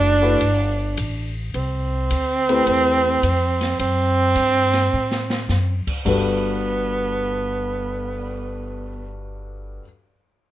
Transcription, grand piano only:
Already playing: A3 D4 E4 F#4 B4
0.22 A3 D4 E4 F#4 B4
2.49 A3 C4 E4 G4 B4
6.05 G2 G3 F#4 A4 B4

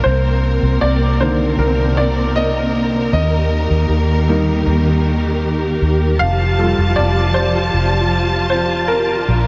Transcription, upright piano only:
0.04 C5
0.81 D5
1.20 D3 D#3 A#3 C5
1.59 A#4
1.97 D5
2.36 D#5
3.13 D#5
4.28 G3 A#3 D#4
6.19 F5
6.59 G3 F4 A4
6.96 D5
7.34 C5
8.50 C5
8.88 A#4

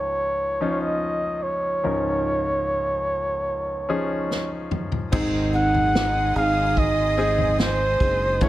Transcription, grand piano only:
Already playing: C#2 G#2 F3 C#4 D#4 G#4
0.61 F3 C#4 D#4 F4
1.83 C#2 G#2 F3 C#4 D#4 A#4
3.89 F3 C#4 D#4 G#4
5.12 G#2 D#3 C4 D#4 G#4
7.17 C4 D#4 G#4
8.41 A2 E3 B3 C#4 E4 A4 C#5

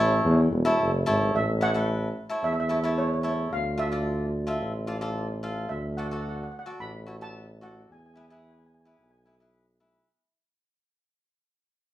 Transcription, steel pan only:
1.36 E5
1.63 F#5
2.44 E5
2.53 E5
2.60 E5
2.69 E5
2.75 E5
2.83 E5
2.98 C#5
3.07 C#5
3.14 C#5
3.22 C#5
3.29 C#5
3.36 C#5
3.53 F5
3.79 E5
5.69 E5
5.97 F#5
6.05 F#5
6.12 F#5
6.21 F#5
6.29 F#5
6.36 F#5
6.43 F#5
6.52 F#5
6.59 F#5
6.67 F#5
6.80 B5
7.22 A5
7.63 F#5
7.92 G#5
7.99 G#5
8.06 G#5
8.14 G#5
8.21 G#5
8.28 G#5
8.36 G#5
8.43 G#5
8.51 G#5
8.59 G#5
8.66 G#5
8.74 G#5
8.81 G#5
8.88 G#5
8.96 G#5
9.03 G#5
9.10 G#5
9.18 G#5
9.25 G#5
9.33 G#5

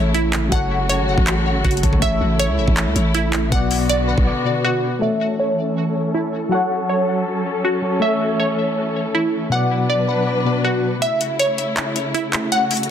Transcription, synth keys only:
Already playing: A3 A4 C#5 E5
0.49 F#3 F#4 A4
0.55 C#5
1.82 F#3 F#4 A4 C#5
1.99 A3 A4 C#5
2.05 E5
3.49 B2 B3 F#4
3.55 D5
4.08 B4
4.27 D5
4.44 B2 B3 F#4 D5
4.65 F#5
4.99 A3 A4 C#5
5.05 E5
6.49 F#3 F#4 A4
6.55 C#5
7.82 F#3 F#4 A4 C#5
7.99 A3 A4 C#5
8.05 E5
9.49 B2 B3 F#4
9.55 D5
10.08 B4
10.27 D5
10.44 B2 B3 F#4 D5
10.65 F#5

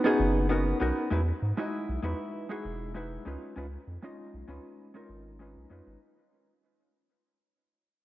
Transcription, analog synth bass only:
0.20 F#1
0.81 B1
1.12 E2
1.42 G#2
1.89 B1
2.03 E2
2.65 E1
3.26 C#2
3.57 C#2
3.87 F2
4.34 B1
4.48 C#2
5.10 G#1
5.56 B1
5.71 F2
5.87 G#1

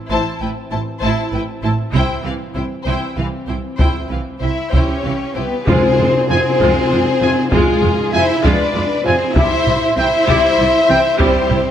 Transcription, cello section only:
0.10 A2
0.41 A2
0.72 A2
1.02 A2
1.33 A2
1.63 A2
1.95 C3
2.25 C3
2.55 C3
2.87 C3
3.17 C3
3.48 C3
3.79 C3
4.10 C3
4.42 C3 E4
4.73 C3 C#4
5.04 C3
5.36 C3 B3
5.68 C4
6.29 C4
7.52 G#3
8.14 E4
8.44 D4
9.05 C4
9.35 E4
9.98 E4
11.20 C4

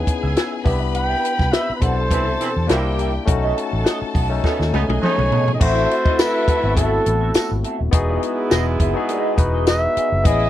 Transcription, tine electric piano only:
Already playing: B3 C#4 D#4 E4 G#4 B4
0.64 B3 D4 E4 G4
1.80 B2 D4 E4 A4
2.67 A#3 D4 E4 F#4
2.76 G4
3.25 A3 C#4 D#4 F#4
4.29 A3 C#4 D#4 A4
5.59 A3 C4 E4 F#4
6.63 B3 C4 E4 F#4
7.91 B3 D#4 F#4 G#4
8.94 B3 D#4 F#4 G#4
9.36 B3 D#4 F#4 B4
10.24 B3 C4 E4 G#4
10.31 C#4

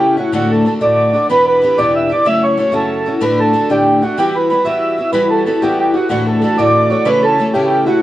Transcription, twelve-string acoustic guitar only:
Already playing: C#3 E3 A3 C#4 E4
0.17 A3 C#4 E4
0.32 D2 A2 D3 A3 D4 F#4
0.65 D3 A3 D4 F#4
0.81 D2 A2 D3 A3 D4 F#4
1.13 D3 A3 D4 F#4
1.30 E2 B2 E3 B3 D4 G4
1.62 E3 B3 D4 G4
1.78 E2 B2 E3 B3 D4 G4
2.09 E3 B3 D4 G4
2.25 F#2 C#3 A3 C#4 E4 F#4
2.58 A3 C#4 E4 F#4
2.72 F#2 C#3 A3 C#4 E4 F#4
3.06 A3 C#4 E4 F#4
3.20 D2 A2 D3 A3 D4 F#4
3.53 D3 A3 D4 F#4
3.70 D2 A2 D3 A3 D4
4.02 D3 A3 D4 F#4
4.17 E3 G3 B3 E4 F#4
4.50 G3 B3 E4 F#4
4.65 E3 G3 B3 E4 F#4
4.98 B3 E4 F#4
5.13 E3 G3 B3 E4 F#4
5.46 G3 B3 E4 F#4
5.62 E3 G3 B3 E4 F#4
5.94 B3 E4 F#4
6.09 D2 A2 E3 A3 D4 F#4
6.42 E3 A3 D4 F#4
6.58 D2 A2 E3 A3 D4 F#4
6.90 E3 A3 D4 F#4
7.05 C#3 E3 A3 C#4 E4
7.39 E3 A3 C#4 E4
7.54 C#3 E3 A3 C#4 E4
7.87 A3 C#4 E4

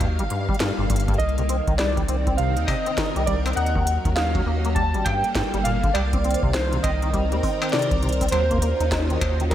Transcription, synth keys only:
Already playing: F5
1.18 D#5
1.78 D5
2.37 F5
2.67 D#5
3.26 D5
3.56 F#5
4.15 F5
4.75 A5
5.04 G5
5.64 F5
5.94 D5
6.53 C5
6.83 D#5
7.72 D5
8.31 C5
9.50 A#4

